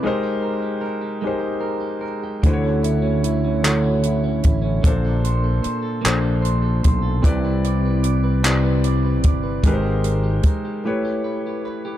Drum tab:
HH |------|xxxxxx|xxxxxx|xxxxxx|
CP |------|---x--|---x--|---x--|
BD |------|o----o|o----o|o----o|

HH |xxx---|
CP |------|
BD |o-o---|